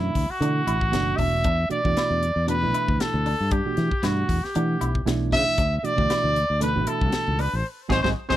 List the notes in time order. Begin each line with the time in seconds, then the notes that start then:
Already playing: B2 E3 A3 D4 E4
0.15 D2, kick, open hi-hat
0.30 F#4, muted fingered electric bass stroke
0.40 B2 D3 E3 A3 D4 E4, closed hi-hat
0.67 A1 E4, closed hi-hat
0.81 kick
0.91 F#1 B2 E3 A3 D4 F#4, snare, closed hi-hat
1.17 E1 D4 E5, kick, open hi-hat
1.44 E2 D4, kick, closed hi-hat
1.69 B2 E3 A3 D4 F#4 D5, muted fingered electric bass stroke, closed hi-hat
1.84 E2 B2 E3 A3 D4 F#4, kick
1.97 E4, snare, closed hi-hat
2.10 E2
2.23 closed hi-hat
2.36 E2
2.47 B2 E3 A3 D4 F#4 B4, closed hi-hat
2.62 B1 B2 E3 A3 D4 E4
2.74 E4, closed hi-hat
2.88 D2, kick
3.00 A4, snare, closed hi-hat
3.14 D2
3.26 D4, open hi-hat
3.40 G2
3.51 D4 G4, kick, closed hi-hat
3.65 B2 E3 A3 D4 F#4
3.77 E3, snare, closed hi-hat
3.91 kick
4.03 G2 B2 E3 A3 D4 E4 F#4, snare, closed hi-hat
4.29 E2, kick, open hi-hat
4.44 G4, muted fingered electric bass stroke, snare
4.55 B2 E3 A3 D4 F#5, closed hi-hat
4.81 B1 E4, closed hi-hat
4.95 kick
5.05 B1 B2 E3 A3 D4 E4, snare, closed hi-hat
5.32 C#3 D4 E5, kick, open hi-hat
5.47 muted fingered electric bass stroke
5.58 D2 D4, kick, closed hi-hat
5.77 E5
5.82 B2 E3 A3 D4 F#4 D5, muted fingered electric bass stroke, closed hi-hat
5.96 D2 B2 E3 A3 D4 F#4, kick
6.10 E4, snare, closed hi-hat
6.24 D2
6.36 closed hi-hat
6.50 D2
6.60 B2 E3 A3 D4 A4 B4, closed hi-hat
6.75 A1 B2 E3 A3 D4 F#4
6.87 E4 A4, muted fingered electric bass stroke, closed hi-hat
7.01 C#2, kick
7.12 snare, closed hi-hat
7.28 C#2
7.39 D4 B4, open hi-hat
7.53 A1 C5
7.89 G#1 F#3 G#3 C4 D#4 F#4 G#4 C5, kick, snare
8.02 G#1 F#3 G#3 C4 D#4 F#4 G#4 C5, kick, snare
8.29 G#1 F#3 G#3 C4 D#4 F#4 G#4 C5, kick, snare